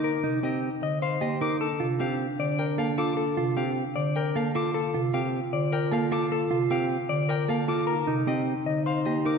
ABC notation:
X:1
M:4/4
L:1/8
Q:1/4=153
K:Gm
V:1 name="Violin"
z2 e z2 f e d' | z2 f z2 g f d' | z2 f z2 g f d' | z2 f z2 g f d' |
z2 f z2 g f d' | z2 e z2 f e d' |]
V:2 name="Clean electric guitar"
B z G z e c z B | A z G z d B z A | A z G z d B z A | A z G z d B z A |
A z G z d B z A | B z G z e c z B |]
V:3 name="Clean electric guitar"
z E C z3 G E | z F C z3 A F | z F C z3 A F | z F C z3 A F |
z F C z3 A F | z E C z3 G E |]
V:4 name="Alto flute"
E6- E z | D8- | D6- D z | F8- |
F6- F z | E8 |]
V:5 name="Marimba" clef=bass
z C, z2 D, z B, z | z C, z2 D, z B, z | z C, z2 D, z B, z | z C, z2 D, z B, z |
z C, z2 D, z B, z | z C, z2 D, z B, z |]